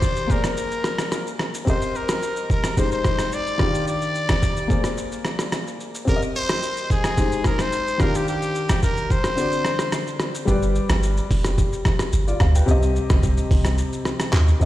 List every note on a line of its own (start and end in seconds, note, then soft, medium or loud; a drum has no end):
0.00 0.26 D#3 medium
0.00 0.27 D4 medium
0.00 0.28 F4 medium
0.00 0.29 G4 medium
0.00 0.33 C5 loud
0.00 kick medium
0.00 shaker medium
0.16 shaker medium
0.27 1.63 A#3 medium
0.27 1.64 G#4 medium
0.27 1.65 C5 medium
0.27 kick medium
0.27 shaker medium
0.31 0.45 A#4 medium
0.31 1.66 D5 medium
0.44 1.37 A#4 medium
0.44 cross-stick medium
0.44 shaker medium
0.57 shaker medium
0.71 shaker soft
0.84 cross-stick medium
0.84 shaker medium
0.98 cross-stick medium
0.98 shaker medium
1.12 cross-stick medium
1.12 shaker medium
1.27 shaker soft
1.39 cross-stick medium
1.39 shaker soft
1.54 shaker loud
1.65 2.74 C4 medium
1.65 2.75 G4 medium
1.65 2.76 A#4 medium
1.65 1.98 C5 medium
1.65 kick loud
1.65 shaker medium
1.70 2.76 D#5 medium
1.82 shaker medium
1.95 2.51 A#4 medium
1.95 shaker soft
2.09 cross-stick loud
2.09 shaker loud
2.22 shaker medium
2.36 shaker medium
2.50 2.80 A#4 medium
2.50 kick medium
2.50 shaker medium
2.64 cross-stick loud
2.64 shaker medium
2.76 3.59 G#3 medium
2.76 3.60 D#4 medium
2.76 3.60 G4 medium
2.76 3.61 C5 medium
2.76 2.92 C5 medium
2.76 kick medium
2.76 shaker medium
2.92 3.35 C5 loud
2.92 shaker soft
3.04 kick medium
3.04 cross-stick medium
3.04 shaker medium
3.19 cross-stick medium
3.19 shaker medium
3.32 3.88 D5 loud
3.32 shaker medium
3.47 shaker soft
3.58 4.67 D#3 medium
3.58 4.67 D4 medium
3.58 4.68 F4 medium
3.58 kick loud
3.58 cross-stick medium
3.58 shaker soft
3.63 4.69 G4 medium
3.74 shaker medium
3.87 4.94 D5 loud
3.87 shaker medium
4.02 shaker medium
4.15 shaker soft
4.29 kick medium
4.29 cross-stick loud
4.29 shaker loud
4.42 kick medium
4.42 shaker medium
4.57 shaker medium
4.68 6.04 A#3 medium
4.68 6.04 G#4 medium
4.68 6.05 C5 medium
4.68 kick medium
4.68 shaker medium
4.72 6.06 D5 medium
4.84 cross-stick medium
4.84 shaker medium
4.97 shaker medium
5.12 shaker medium
5.25 cross-stick medium
5.25 shaker medium
5.39 cross-stick medium
5.39 shaker medium
5.52 cross-stick medium
5.52 shaker medium
5.67 shaker soft
5.80 shaker soft
5.95 shaker medium
6.05 7.14 C4 medium
6.05 7.15 G4 medium
6.05 7.16 A#4 medium
6.05 6.21 A#4 loud
6.05 kick loud
6.05 shaker medium
6.10 6.16 D5 medium
6.16 7.20 D#5 medium
6.22 shaker medium
6.35 6.87 C5 loud
6.35 shaker medium
6.49 cross-stick loud
6.49 shaker loud
6.63 shaker medium
6.77 shaker medium
6.90 7.48 G#4 loud
6.90 kick medium
6.90 shaker soft
7.04 cross-stick loud
7.04 shaker medium
7.17 8.00 G#3 medium
7.17 8.00 D#4 medium
7.17 8.01 G4 medium
7.17 8.01 C5 medium
7.17 kick medium
7.17 shaker medium
7.32 shaker soft
7.44 7.62 A#4 medium
7.44 kick medium
7.44 cross-stick medium
7.44 shaker medium
7.59 8.03 C5 loud
7.59 cross-stick medium
7.59 shaker medium
7.72 shaker medium
7.87 shaker soft
7.98 9.07 D#3 medium
7.98 9.08 D4 medium
7.98 9.09 F4 medium
7.98 8.18 A#4 medium
7.98 kick loud
7.98 cross-stick medium
7.98 shaker soft
8.03 9.09 G4 medium
8.15 8.28 G4 medium
8.15 shaker loud
8.28 8.80 G4 medium
8.28 shaker medium
8.42 shaker medium
8.55 shaker medium
8.69 kick medium
8.69 cross-stick loud
8.69 shaker loud
8.83 9.13 A#4 medium
8.83 kick medium
8.83 shaker medium
8.97 shaker medium
9.10 10.21 C5 loud
9.10 kick medium
9.10 shaker medium
9.24 cross-stick loud
9.24 shaker medium
9.36 10.45 D3 medium
9.36 10.45 C4 medium
9.36 10.46 F#4 medium
9.36 shaker medium
9.41 10.47 D5 medium
9.52 shaker medium
9.65 cross-stick medium
9.65 shaker medium
9.79 cross-stick medium
9.79 shaker medium
9.92 cross-stick medium
9.92 shaker medium
10.07 shaker soft
10.20 cross-stick medium
10.20 shaker soft
10.35 shaker loud
10.45 10.80 G1 loud
10.45 12.63 G3 medium
10.45 12.09 G4 medium
10.45 12.10 B4 medium
10.45 kick loud
10.45 shaker medium
10.51 12.11 D5 medium
10.62 shaker medium
10.75 shaker medium
10.89 11.21 G1 medium
10.89 cross-stick loud
10.89 shaker loud
11.03 shaker medium
11.17 shaker medium
11.31 11.62 F1 medium
11.31 kick medium
11.31 open hi-hat medium
11.31 shaker medium
11.45 cross-stick loud
11.45 shaker medium
11.58 kick medium
11.58 shaker medium
11.73 shaker medium
11.85 kick loud
11.85 cross-stick medium
11.85 shaker medium
11.99 cross-stick medium
11.99 shaker medium
12.13 12.34 G1 loud
12.13 shaker medium
12.28 12.40 F4 medium
12.28 12.40 D5 medium
12.28 shaker medium
12.40 12.62 D2 loud
12.40 12.54 F5 medium
12.40 kick loud
12.40 cross-stick loud
12.40 shaker soft
12.55 12.82 B4 medium
12.55 12.81 G5 medium
12.55 shaker loud
12.66 13.00 C2 loud
12.66 14.56 C3 medium
12.66 14.57 C4 medium
12.66 14.58 G4 medium
12.66 shaker medium
12.71 14.58 D#5 medium
12.82 shaker medium
12.96 shaker medium
13.10 13.41 C2 medium
13.10 kick loud
13.10 cross-stick loud
13.10 shaker loud
13.23 kick loud
13.23 shaker medium
13.37 shaker medium
13.51 13.82 C2 medium
13.51 kick loud
13.51 open hi-hat medium
13.51 shaker medium
13.65 cross-stick loud
13.65 shaker medium
13.78 shaker medium
13.93 shaker medium
14.05 cross-stick medium
14.05 shaker medium
14.20 cross-stick medium
14.20 shaker medium
14.33 14.54 D#2 medium
14.33 cross-stick medium
14.33 clap medium
14.33 shaker medium
14.48 shaker soft
14.60 14.65 C2 loud
14.60 14.65 C3 medium
14.60 14.65 C4 medium
14.60 14.65 G4 medium
14.60 14.65 D#5 medium
14.60 shaker soft